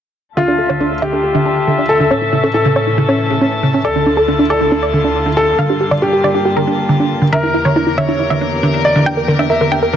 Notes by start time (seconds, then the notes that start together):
0.37 D2 D3 F4 E5 A5
0.48 D4 A4, tambourine
0.58 A4
0.69 D3 C#5, tambourine
0.80 D4 A4, tambourine
0.91 A4, tambourine
1.02 D3 G4 E5
1.13 D4 A4, tambourine
1.24 A4, tambourine
1.35 D3 E5, tambourine
1.46 D4
1.57 tambourine
1.67 D3, tambourine
1.78 D4, tambourine
1.89 A4
2.00 D3, tambourine
2.11 A2 E3 C#4 C#5, tambourine
2.22 E4, tambourine
2.33 C#3 E4
2.43 C#4 A4, tambourine
2.54 E4 A4, tambourine
2.65 C#3 E4, tambourine
2.76 C#4 C#5
2.87 E4, tambourine
2.98 C#3 E4, tambourine
3.09 C#4 C#5, tambourine
3.30 C#3, tambourine
3.41 C#4, tambourine
3.52 tambourine
3.63 C#3
3.74 C#4, tambourine
3.84 D2 D3 E4 F4 A4 D5, tambourine
3.96 D3 D4, tambourine
4.06 D4
4.17 A4, tambourine
4.28 D3 D4, tambourine
4.39 D4, tambourine
4.50 A4 D5
4.61 D3 D4, tambourine
4.72 D4, tambourine
4.83 D5
4.93 D3
5.04 D4, tambourine
5.15 tambourine
5.26 D3, tambourine
5.37 D4 A4
5.48 tambourine
5.59 G2 D3 A#3 F5, tambourine
5.70 D4 G4, tambourine
5.81 G4
5.91 D3 D5, tambourine
6.02 D4 G4, tambourine
6.13 G4, tambourine
6.24 D3 D5
6.35 D4 G4, tambourine
6.45 G4, tambourine
6.56 D3 A#4, tambourine
6.67 D4
6.78 tambourine
6.89 D3, tambourine
7.00 D4, tambourine
7.22 D3, tambourine
7.32 E2 D3 E3 A#3 G4 A#4 E5
7.43 D4 E4, tambourine
7.54 E4
7.65 D3 C#5, tambourine
7.76 D4 E4, tambourine
7.87 E4, tambourine
7.98 D3 C#5 E5
8.08 D4 E4, tambourine
8.19 E4, tambourine
8.30 D3 E5
8.41 D4
8.52 tambourine
8.63 D3, tambourine
8.74 D4
8.85 D5
8.96 D3, tambourine
9.06 D4 G5, tambourine
9.17 A#4, tambourine
9.28 D3 A#4
9.39 D4 E5, tambourine
9.50 A#4 E5, tambourine
9.61 D3 A#4, tambourine
9.72 D4 G5
9.83 A#4, tambourine
9.93 D3 A#4, tambourine